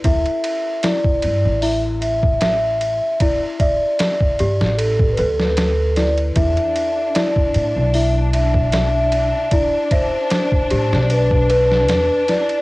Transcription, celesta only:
X:1
M:4/4
L:1/8
Q:"Swing 16ths" 1/4=76
K:Em
V:1 name="Celesta"
E z E2 E z e2 | E e2 G2 B2 E | E z E2 E z e2 | E e2 G2 B2 E |]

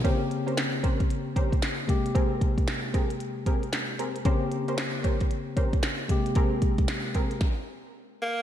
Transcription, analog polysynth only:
X:1
M:4/4
L:1/16
Q:"Swing 16ths" 1/4=114
K:Bbdor
V:1 name="Analog polysynth"
[DGBc] z2 [DGBc] z2 [DGBc] z3 [DGBc] z4 z | [CGAB]2 z4 [CGAB] z3 [CGAB] z3 [CGAB] z | [DGBc] z2 [DGBc] z2 [DGBc] z3 [DGBc] z4 z | [CGAB]2 z4 [CGAB] z8 z |]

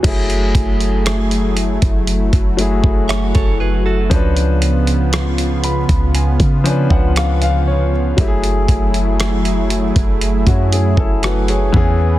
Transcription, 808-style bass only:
X:1
M:4/4
L:1/16
Q:1/4=59
K:F#m
V:1 name="808-style bass" clef=bass
F,,,2 F,,,4- F,,, F,,,2 F,,,2 F,,,2 F,,,3 | C,,6- C,, C,,2 C,2 C,,4- C,, | F,,,2 F,,,4- F,,, F,,,2 F,,2 F,,,3 E,,2 |]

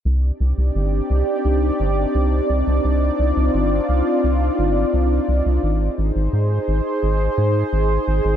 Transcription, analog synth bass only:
X:1
M:4/4
L:1/16
Q:1/4=86
K:Cm
V:1 name="Analog synth bass" clef=bass
C,, z C,, C,, G,,, z C,, z C,, z G,,, z C,, z C,, C,, | C,, z C,, C,, G,,, z C,, z C,, z G,,, z C,, z C,, C,, | A,,, z A,,, A,,, A,, z A,,, z A,,, z A,, z A,,, z A,,, A,,, |]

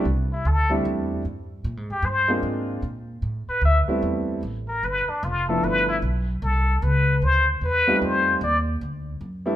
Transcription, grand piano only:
X:1
M:4/4
L:1/8
Q:"Swing" 1/4=151
K:Clyd
V:1 name="Grand piano"
z3 [G,A,CDE]3 z2 | z3 [^G,^A,^B,D^E]3 z2 | z3 [G,A,B,CE]3 z2 | z3 [=F,A,B,DE]3 z2 |
z6 z [G,A,C^D=F]- | [G,A,C^D=F]2 z4 z [G,A,B,=DE] |]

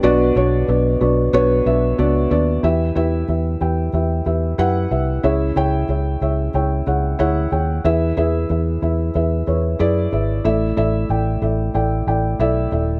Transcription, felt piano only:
X:1
M:4/4
L:1/8
Q:1/4=92
K:Edor
V:1 name="Felt piano"
[B,DFBd] [B,DFBc] [B,DFBd] [B,DFBd] [B,DFBc] [B,DFBe] [B,DFBd] [B,DFBd] | [EGBe] [EGBe] [EGBe] [EGBg] [EGBe] [EGBe] [EGBf] [EGBe] | [E^Gce] [EGc=g] [E^Gce] [EGce] [EGc=g] [E^Gcf] [EGcf] [EGc=g] | [E^GBe] [EGBe] [EGBe] [EGBe] [EGBe] [EGBc] [EGBd] [EGBe] |
[EAde] [EAde] [EAdg] [EAde] [EAdg] [EAdg] [EAde] [EAde] |]
V:2 name="Felt piano" clef=bass
B,,3 z4 z | E,3 z4 z | C,3 z4 z | E,3 z4 z |
A,,3 z4 z |]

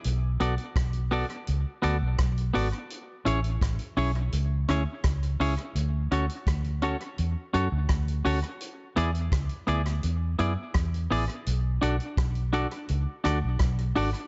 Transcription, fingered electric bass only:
X:1
M:4/4
L:1/16
Q:1/4=84
K:Bdor
V:1 name="Fingered electric bass" clef=bass
B,,,2 B,,, z B,,,3 z C,, z D,, B,,, B,,,2 G,,, z | z2 A,,,2 A,,, z B,,,2 C,,2 D,, z C,,2 C,, z | D,,2 D,, z D,,3 z E,, z F,, D,, D,,2 D,, z | z2 E,,2 C,, z D,,2 E,,2 F,, z E,,2 A,,, z |
B,,,2 B,,, z B,,,3 z C,, z D,, B,,, B,,,2 G,,, z |]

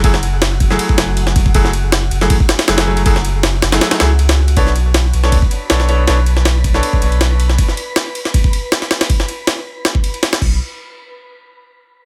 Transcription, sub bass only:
X:1
M:4/4
L:1/8
Q:"Swing 16ths" 1/4=159
K:Bm
V:1 name="Sub bass" clef=bass
F,,,3 F,,, z F,,,3 | F,,,3 F,,, A,,, z F,,,2 | F,,,3 F,,, z C,,3 | B,,,3 B,,, D,, z B,,,2 |
B,,,3 B,,, z B,,,3 | z8 | z6 z B,,, | z8 |]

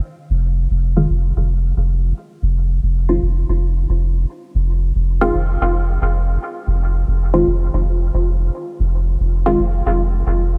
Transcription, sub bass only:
X:1
M:4/4
L:1/16
Q:1/4=113
K:Fm
V:1 name="Sub bass" clef=bass
z2 F,,,3 F,,,3 F,,,2 F,,,3 F,,,3 | z2 F,,,3 F,,,3 F,,,2 F,,,3 F,,,3 | z2 F,,,3 F,,,3 F,,,2 F,,,3 F,,,3 | z2 F,,,3 F,,,3 F,,,2 F,,,3 F,,,3 |
z2 F,,,3 F,,,3 F,,,2 F,,,3 F,,,3 |]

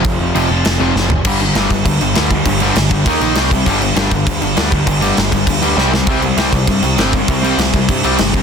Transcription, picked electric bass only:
X:1
M:4/4
L:1/8
Q:1/4=199
K:Cdor
V:1 name="Picked electric bass" clef=bass
F,,, F,,, F,,, F,,, F,,, F,,, ^F,,,2 | G,,,2 G,,, G,,, D,, G,,, D,,2 | G,,,2 G,,, G,,, E,, B,,, C,,2 | G,,,2 G,,, G,,, D,, G,,, D,,2 |
G,,,2 G,,, G,,, D,, D,, C,,2 | C,,2 C,, C,, G,, C,, G,,,2 | C,,2 C,, C,, G,, C,, G,,,2 |]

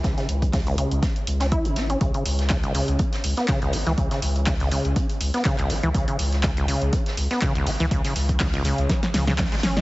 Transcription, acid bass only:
X:1
M:4/4
L:1/16
Q:"Swing 16ths" 1/4=122
K:C#m
V:1 name="Acid bass" clef=bass
C, C, z2 C, C,, C,2 C z2 C E C, C C | C, C, z2 C, C,, C,2 C z2 B, C, C,, F, E, | C, C, z2 C, C,, C,2 C z2 B, C, C,, F, E, | C, C, z2 C, C,, C,2 C z2 B, C, C,, F, E, |
C, C, z2 C, C,, C,2 C z C, C, C, G, C E |]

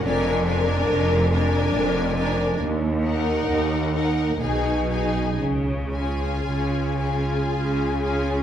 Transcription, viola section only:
X:1
M:3/4
L:1/8
Q:1/4=66
K:C#mix
V:1 name="Viola section"
=D D2 D2 D | z D2 D D D | z E2 E2 E |]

